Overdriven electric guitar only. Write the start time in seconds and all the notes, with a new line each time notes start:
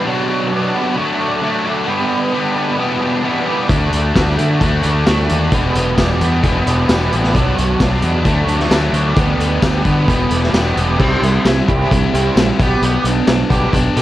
Already playing: D4
0.06 F#3
0.52 D4
0.74 B3
0.97 A3
1.19 D4
1.43 A3
1.65 D4
1.87 B3
2.34 D4
2.56 B3
2.78 B3
3.01 D4
3.24 B3
3.47 D4
3.70 A3
4.16 D4
4.37 A3
4.60 A3
4.83 D4
5.07 A3
5.31 D4
5.54 B3
5.99 D4
6.21 B3
6.44 B3
6.66 D4
6.88 B3
7.11 D4
7.34 F#3
7.81 D4
8.04 B3
8.26 A3
8.49 D4
8.74 A3
8.94 D4
9.18 B3
9.64 D4
9.87 B3
10.10 B3
10.32 D4
10.56 B3
10.77 D4
10.99 G3 C4 E4
11.22 G3 C4
11.44 G3 C4
11.67 G3 C4 E4
11.91 G3 C4
12.13 G3 C4 E4
12.37 G3 C4
12.59 B3 D4 G4
12.83 B3 D4 G4
13.05 B3 D4
13.27 B3 D4
13.50 B3 D4 G4
13.73 B3 D4
13.96 B3 D4 G4